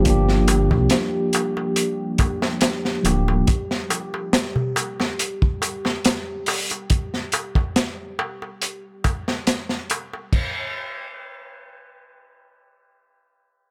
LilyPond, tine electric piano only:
\new Staff \with { instrumentName = "Tine electric piano" } { \time 4/4 \key g \phrygian \tempo 4 = 70 <f bes d' g'>2.~ <f bes d' g'>8 <f bes d' g'>8 | r1 | r1 | r1 | }